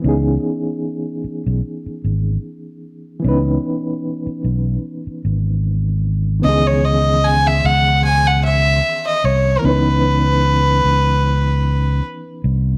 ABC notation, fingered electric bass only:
X:1
M:4/4
L:1/16
Q:"Swing 16ths" 1/4=75
K:C#m
V:1 name="Fingered electric bass" clef=bass
C,,2 z4 z B,,, z2 G,,,2 z4 | C,,2 z4 B,,,2 z2 G,,,6 | C,,6 C,,6 z2 ^B,,,2 | C,,6 C,,6 z2 ^B,,,2 |]